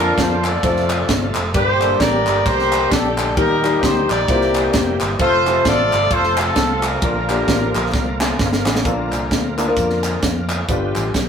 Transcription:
Already playing: F2 D3 F3 A#3 D4 F4 A#4 D5
0.00 A#3 D4 F4 A4, ride
0.18 F2 C5, kick, snare, ride
0.44 F4 A4 D5, clap, ride
0.63 F2 C3 A3 C4 F4 A4, kick, snare, ride
0.77 snare
0.90 clap, ride
1.09 G1, kick, snare, ride
1.35 F1, clap, ride
1.54 G1 G2 A#2 D3 G3 A#3 D4 G4 C5, kick, ride
1.81 G3 A#3 D4 A4, clap, ride
2.00 A1 G4 A#4 D5, kick, snare, ride
2.27 G1, clap, ride
2.46 C2 G4 C5, kick, snare, ride
2.59 snare
2.72 clap, ride
2.92 A#1 D4 A4, kick, snare, ride
3.18 clap, ride
3.37 D#2 A#2 D#3 G3 A#3 D#4 G4 A#4, kick, ride
3.64 G3 A#3 D#4 G4, clap, ride
3.82 D2 C5, kick, snare, ride
4.09 A#1 G4 A#4 D5, clap, ride
4.28 C2 C3 E3 G3 A#3 C4 E4 F4, kick, snare, ride
4.35 G4
4.41 snare
4.54 clap, ride
4.73 F1, kick, snare, ride
5.01 G1, clap, ride
5.19 F1 C3 F3 A3 C4 F4 A4 C5, kick, ride
5.47 A3 C4 F4 G4, clap, ride
5.53 A4
5.65 A1 F4 A4 D5, kick, snare, ride
5.93 G1, clap, ride
6.11 F1 F4 A4 C5, kick, ride
6.24 snare
6.37 C4 F4 A4, clap, ride
6.56 C2, kick, snare, ride
6.83 D4 F4 A#4, clap, ride
7.02 A#1 A#2 D3 A#3 D4 F4 A#4, kick, ride
7.29 A#3 D4 F4 G4, clap, ride
7.48 A1, kick, snare, ride
7.75 A#1, clap, ride
7.94 C2, kick, snare
8.21 snare, clap
8.39 G1, kick, snare
8.53 snare
8.66 A1, snare, clap
8.76 snare
8.85 A#1 A#2 D3 F3 A#3 D4 F4 A4 A#4, kick, closed hi-hat
8.91 A#4
9.12 C2, clap, closed hi-hat
9.31 D2, kick, snare, closed hi-hat
9.57 A#3 D4 F4 A4, clap, closed hi-hat
9.68 A#3 D4 F4 A#4
9.76 F2, kick, snare, closed hi-hat
9.90 snare
10.03 clap, closed hi-hat
10.22 F2, kick, snare, closed hi-hat
10.49 clap, closed hi-hat
10.68 G1 G2 D3 G3 B3 D4 F4 G4 B4, kick, closed hi-hat
10.95 A1, clap, closed hi-hat
11.14 B1, kick, snare, closed hi-hat

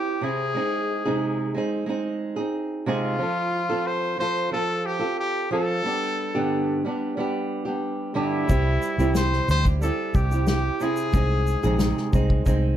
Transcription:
Already playing: C4 E4 G4
0.21 C3 C4 E4 G#4
0.54 G#3 C4 D#4 G#4
1.05 C3 G#3 C4 D#4 G#4
1.54 G#3 C4 D#4 G#4
1.86 G#3 C4 D#4 G#4
2.36 C4 D#4 G#4
2.86 C3 G#3 C4 D#4 F4 G#4
3.19 F3 C4 F4 A4
3.69 F3 C4 F4 A4
3.87 C5
4.18 F3 C4 F4 A4 C5
4.51 F3 C4 F4 A4
4.86 G4
4.99 F4 A4
5.03 C4
5.19 G4
5.51 F3 C4 F4 A4
5.84 G3 B3 D4 G4
6.35 G2 D3 G3 B3 D4 G4
6.85 G3 B3 D4 G4
7.17 G3 B3 D4 G4
7.65 G3 B3 D4 G4
8.14 G2 D3 G3 B3 D4 G4
8.18 E4
8.47 C2 G3 C4 E4 G4, kick, shaker
8.82 shaker
8.98 C2 C3 G3 C4 E4 G4, shaker
9.15 C5, snare, shaker
9.33 snare
9.48 D2 G3 C4 E4 G4 C5, shaker
9.65 kick, shaker
9.81 G3 C4 E4 G4 A4, shaker
10.14 C2 G4, kick, shaker
10.31 C4 E4 G4, shaker
10.47 G4, snare, shaker
10.80 C3 C4 E4 G#4, shaker
10.97 shaker
11.13 C2 G#3 C4 D#4 G#4, kick, shaker
11.47 shaker
11.63 A#1 C3 G#3 C4 D#4 G#4, shaker
11.79 snare, shaker
11.97 snare
12.13 C2 G#3 C4 D#4 G#4, kick, shaker
12.30 kick
12.46 C2 G#3 C4 D#4 G#4, kick, shaker

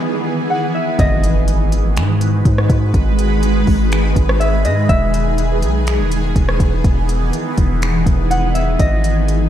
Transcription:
Already playing: D#3 E3 B3 G#4
0.50 F#5
0.75 E5
0.99 G#1 D#3 G#3 F#4 B4 D#5, kick, closed hi-hat, impact
1.24 closed hi-hat
1.48 closed hi-hat
1.72 closed hi-hat
1.97 G#2, finger snap, closed hi-hat
2.21 closed hi-hat
2.45 G#2, kick, closed hi-hat
2.58 cross-stick
2.70 G#2, kick, closed hi-hat
2.94 G#1 G#4, kick, closed hi-hat
3.19 closed hi-hat
3.43 closed hi-hat
3.67 G#1, kick, open hi-hat
3.92 finger snap, closed hi-hat
4.16 G#1, kick, closed hi-hat
4.29 cross-stick
4.40 E5, closed hi-hat
4.65 G#2 D#5, closed hi-hat
4.89 E1 E3 B3 E5, kick, closed hi-hat
5.14 closed hi-hat
5.38 closed hi-hat
5.62 B1, closed hi-hat
5.87 finger snap, closed hi-hat
5.99 E1
6.11 closed hi-hat
6.36 E1, kick, closed hi-hat
6.49 cross-stick
6.60 E1, kick, closed hi-hat
6.84 E1, kick, closed hi-hat
7.09 closed hi-hat
7.33 closed hi-hat
7.58 E1, kick, closed hi-hat
7.82 finger snap, closed hi-hat
8.06 E1, kick, closed hi-hat
8.31 F#5, closed hi-hat
8.55 E5, closed hi-hat
8.79 G#1 G#3 F#4 B4 D#5, kick, closed hi-hat
9.04 closed hi-hat
9.28 closed hi-hat

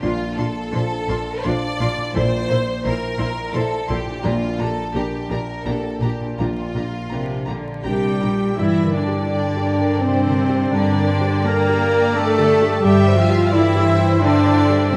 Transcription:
Already playing: A#2 D4 F4
0.00 A#1 A#2 D4 F4 C5 C6
0.04 A#1
0.37 A#1 A#2 D4 F4 A4 C6
0.72 A#1 A#2 D4 F4 C5 C6
1.08 A#1 A#2 D4 F4 C6
1.43 A#1 A#2 D4 F4 C5 D5 C6
1.80 A#1 A#2 D4 F4 C6
1.97 A#2
2.01 E4
2.06 A5
2.10 A#2 C5
2.15 A#1 A#2 E4 A4 C5 C6
2.49 A#1 A#2 E4 A4 C6
2.83 A#1 A#2 E4 A#4 C5 C6
3.18 A#1 A#2 E4 C5 C6
3.53 A#1 A#2 E4 A4 C5 C6
3.88 A#1 A#2 E4 G4 A4 C6
4.06 A#2
4.10 D4
4.15 G4
4.19 D5
4.23 A#1 A#2 D4 F4 G4 A#5
4.59 A#1 A#2 D4 G4 A4 A#5
4.94 A#1 A#2 D4 G4 A#4 A#5
5.28 A#1 A#2 D4 G4 A#4 A#5
5.64 A#1 A#2 D4 G4 A4 A#5
5.68 A#3
6.00 A#1 A#2 D4 G4 A#5
6.20 A#2
6.24 D4
6.29 G4
6.36 A#1 A#2 D4 F4 G4 A#5
6.41 A#1
6.75 A#1 A#2 D4 G4 A#5
7.10 A#1 C3 D4 G4 A#4 A#5
7.46 A#1 D3 D4 G4 A#5
7.83 A#1 C3 G3 D4 G4 A#4 G5 A#5
8.20 A#1 A#2 D4 G4 A#5
8.57 G2 E3 E4 D5 E5 G5
8.82 D3 A#4
8.93 D3 D4 D5
9.06 D4 G4
9.30 G4 A4 D5
9.56 G4
9.66 A#4
9.78 G4 A#4
10.01 C3 C4 D4 C5
10.25 D3 A#4
10.49 D4 G4
10.71 G2 D3 D4 A#4 D5
10.95 D3 A#4
11.09 C5
11.20 D4 G4
11.45 A#3 G4 A4 A#4 D5 A#5
11.69 G4
11.92 G4 A#4
12.15 A3 D4 A4 A5
12.38 D3 G4
12.61 D4 G4
12.83 G2 G3 G4 E5 G5
13.06 G3 C5
13.17 F3 F4 F5
13.29 E4 G4
13.51 E3 E4 G4 A4 D5 E5
13.75 G4 C5
13.87 C5
13.99 G4 C5
14.22 D3 D4 E4 D5
14.45 G3 C5
14.69 E4 G4
14.92 G2 C3 C4 C5

